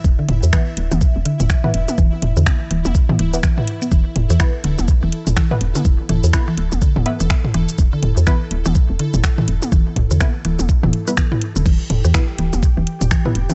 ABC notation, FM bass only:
X:1
M:4/4
L:1/16
Q:"Swing 16ths" 1/4=124
K:Em
V:1 name="FM bass" clef=bass
E,,, z E,,, E,, z2 D,,, E,,, z E,,, z E,,, z2 E,,, z | E,,, z E,,, E,, z2 D,,, E,,, z2 D,,,2 z4 | E,,, z E,,, E,, z2 D,,, E,,, z E,,, z E,,, z2 E,,, z | E,,, z E,,, E,, z2 D,,, E,,, z E,,, z E,,, z2 E,,, z |
E,,, z E,,, E,, z2 D,,, E,,, z E,,, z E,,, z2 E,,, z | E,,, z E,,, E,, z2 D,,, E,,, z E,,, z4 z E,,, | E,,, z E,,, E,, z2 D,,, E,,, z E,,, z E,,, z2 E,,, z |]